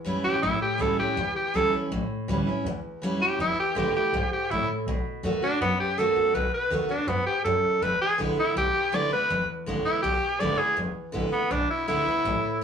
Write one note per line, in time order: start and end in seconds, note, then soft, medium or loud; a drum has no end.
0.00 0.39 E2 medium
0.05 0.23 F#2 medium
0.05 0.23 E3 medium
0.05 0.24 G3 medium
0.05 0.24 C#4 loud
0.05 0.23 E4 medium
0.24 0.42 A2 medium
0.24 0.43 C#4 soft
0.24 0.42 E4 medium
0.24 0.42 G4 loud
0.42 0.61 A1 medium
0.42 1.13 A2 medium
0.42 0.61 E4 loud
0.61 0.82 G4 medium
0.61 muted upright bass stroke medium
0.78 0.97 C#2 medium
0.78 0.97 E3 medium
0.78 0.98 G3 loud
0.78 0.98 C#4 medium
0.78 0.97 E4 loud
0.78 0.98 A4 medium
0.98 1.18 C#4 soft
0.98 1.16 E4 medium
0.98 1.35 G4 medium
0.98 muted upright bass stroke medium
1.16 1.34 E2 medium
1.16 1.87 E2 medium
1.35 1.57 G4 loud
1.35 muted upright bass stroke medium
1.54 1.71 C#2 medium
1.54 1.72 E3 medium
1.54 1.72 G3 medium
1.54 1.73 C#4 medium
1.54 1.70 E4 loud
1.54 1.73 A4 loud
1.72 1.91 C#4 soft
1.72 1.90 E4 medium
1.72 muted upright bass stroke medium
1.91 2.09 A1 medium
1.91 2.62 A2 medium
2.10 muted upright bass stroke medium
2.28 2.45 D2 medium
2.28 2.46 E3 medium
2.28 2.46 G3 loud
2.28 2.47 C#4 loud
2.28 2.45 E4 medium
2.46 2.66 C#4 soft
2.46 2.64 E4 medium
2.46 muted upright bass stroke medium
2.64 2.82 E2 medium
2.64 3.36 E2 medium
2.84 muted upright bass stroke medium
3.02 3.20 F#2 medium
3.02 3.20 E3 medium
3.02 3.20 G3 loud
3.02 3.21 C#4 loud
3.02 3.19 E4 loud
3.20 3.38 F#1 medium
3.20 3.40 C#4 soft
3.20 3.38 E4 medium
3.20 3.39 G4 medium
3.39 3.56 E1 medium
3.39 4.10 E2 medium
3.39 3.58 E4 loud
3.57 3.77 G4 medium
3.57 muted upright bass stroke medium
3.75 3.93 G#1 medium
3.75 3.93 D3 medium
3.75 3.94 G#3 loud
3.75 3.94 B3 loud
3.75 3.93 E4 loud
3.75 3.95 G4 medium
3.95 4.14 B3 medium
3.95 4.13 E4 medium
3.95 4.31 G4 medium
3.95 muted upright bass stroke medium
4.12 4.30 B1 medium
4.12 4.49 G#2 medium
4.31 4.52 G4 medium
4.31 muted upright bass stroke medium
4.50 4.68 G#1 medium
4.50 4.86 A2 medium
4.50 4.68 E4 loud
4.86 5.04 B1 medium
4.86 5.58 B2 medium
5.05 muted upright bass stroke medium
5.23 5.41 E2 medium
5.23 5.41 D#3 medium
5.23 5.42 A3 medium
5.23 5.42 B3 medium
5.23 5.41 F#4 loud
5.42 5.61 B3 medium
5.42 5.61 D4 loud
5.42 5.60 F#4 medium
5.42 muted upright bass stroke medium
5.61 5.78 F#2 medium
5.61 6.32 F#2 medium
5.61 5.79 B3 loud
5.80 5.99 G4 medium
5.98 6.15 G#2 medium
5.98 6.16 D#3 medium
5.98 6.16 A3 loud
5.98 6.17 B3 medium
5.98 6.15 F#4 medium
5.98 6.36 A4 loud
6.16 6.34 B2 medium
6.16 6.35 B3 medium
6.16 6.34 F#4 medium
6.34 6.52 B1 medium
6.34 7.05 B2 medium
6.34 6.53 B4 loud
6.54 6.72 B4 loud
6.70 6.89 D#2 medium
6.70 6.89 D#3 medium
6.70 6.89 A3 medium
6.70 6.90 B3 medium
6.70 6.88 F#4 loud
6.89 7.09 B3 soft
6.89 7.10 D4 medium
6.89 7.07 F#4 medium
6.89 muted upright bass stroke medium
7.07 7.25 F#2 medium
7.07 7.43 G#2 medium
7.07 7.26 B3 loud
7.26 7.44 G4 loud
7.26 muted upright bass stroke medium
7.44 7.62 F#2 medium
7.44 7.81 F#2 medium
7.44 7.84 A4 medium
7.63 muted upright bass stroke medium
7.81 7.99 E1 loud
7.81 8.53 E2 loud
7.81 8.01 B4 loud
8.01 8.19 G#4 loud
8.01 muted upright bass stroke medium
8.18 8.37 A1 medium
8.18 8.37 D3 loud
8.18 8.37 G#3 medium
8.18 8.38 B3 medium
8.18 8.36 E4 loud
8.37 8.56 B3 medium
8.37 8.55 E4 medium
8.37 8.57 E4 loud
8.37 muted upright bass stroke medium
8.56 8.73 B1 loud
8.56 9.27 B2 loud
8.56 8.96 G4 loud
8.74 muted upright bass stroke medium
8.92 9.10 C#2 medium
8.92 9.11 D3 medium
8.92 9.11 G#3 medium
8.92 9.11 B3 medium
8.92 9.10 E4 medium
8.92 9.12 D5 loud
9.11 9.29 E2 medium
9.11 9.30 B3 medium
9.11 9.29 E4 medium
9.11 9.48 B4 loud
9.30 9.48 E1 medium
9.30 10.00 E2 medium
9.49 muted upright bass stroke medium
9.66 9.84 G#1 medium
9.66 9.84 D3 medium
9.66 9.85 G#3 medium
9.66 9.85 B3 medium
9.66 9.84 E4 medium
9.85 10.04 B3 medium
9.85 10.03 E4 medium
9.85 10.01 E4 loud
9.85 muted upright bass stroke medium
10.02 10.21 B1 medium
10.02 10.74 B2 medium
10.02 10.41 G4 loud
10.40 10.58 G#1 medium
10.40 10.58 D3 medium
10.40 10.58 G#3 medium
10.40 10.58 B3 medium
10.40 10.56 E4 loud
10.40 10.60 D5 loud
10.57 10.77 B3 soft
10.57 10.76 E4 medium
10.57 10.77 G#4 loud
10.57 muted upright bass stroke medium
10.77 10.95 E1 loud
10.77 11.47 E2 medium
10.96 muted upright bass stroke medium
11.12 11.32 A1 medium
11.12 11.31 D3 medium
11.12 11.32 G#3 medium
11.12 11.32 B3 medium
11.12 11.31 E4 medium
11.32 11.53 B3 medium
11.32 11.52 B3 medium
11.32 11.50 E4 medium
11.32 muted upright bass stroke medium
11.51 11.68 B1 medium
11.51 12.21 B2 medium
11.51 11.69 D4 medium
11.69 11.88 E4 medium
11.69 muted upright bass stroke medium
11.88 12.06 C#2 medium
11.88 12.06 D3 medium
11.88 12.06 G#3 loud
11.88 12.06 B3 medium
11.88 12.60 E4 loud
11.88 12.04 E4 loud
12.06 12.24 E2 medium
12.06 12.25 B3 medium
12.06 12.24 E4 medium
12.24 12.42 A1 medium
12.24 12.64 A2 medium
12.44 muted upright bass stroke medium